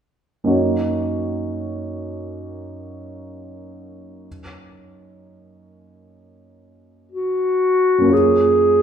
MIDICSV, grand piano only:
0, 0, Header, 1, 2, 480
1, 0, Start_track
1, 0, Key_signature, 6, "major"
1, 0, Tempo, 500000
1, 8470, End_track
2, 0, Start_track
2, 0, Title_t, "Grand piano"
2, 0, Program_c, 0, 0
2, 422, Note_on_c, 0, 42, 30
2, 422, Note_on_c, 0, 58, 24
2, 427, Note_on_c, 0, 63, 24
2, 452, Note_on_c, 0, 66, 25
2, 482, Note_on_c, 0, 73, 25
2, 713, Control_c, 0, 64, 127
2, 4110, Control_c, 0, 64, 0
2, 4237, Control_c, 0, 64, 127
2, 7647, Note_off_c, 0, 42, 0
2, 7661, Note_on_c, 0, 42, 28
2, 7676, Note_off_c, 0, 58, 0
2, 7691, Note_on_c, 0, 58, 25
2, 7709, Note_off_c, 0, 63, 0
2, 7718, Note_on_c, 0, 61, 23
2, 7722, Note_off_c, 0, 66, 0
2, 7736, Note_off_c, 0, 73, 0
2, 7751, Note_on_c, 0, 65, 21
2, 7772, Note_on_c, 0, 73, 23
2, 7806, Control_c, 0, 64, 0
2, 8000, Control_c, 0, 64, 127
2, 8470, Note_off_c, 0, 42, 0
2, 8470, Note_off_c, 0, 58, 0
2, 8470, Note_off_c, 0, 61, 0
2, 8470, Note_off_c, 0, 65, 0
2, 8470, Note_off_c, 0, 73, 0
2, 8470, End_track
0, 0, End_of_file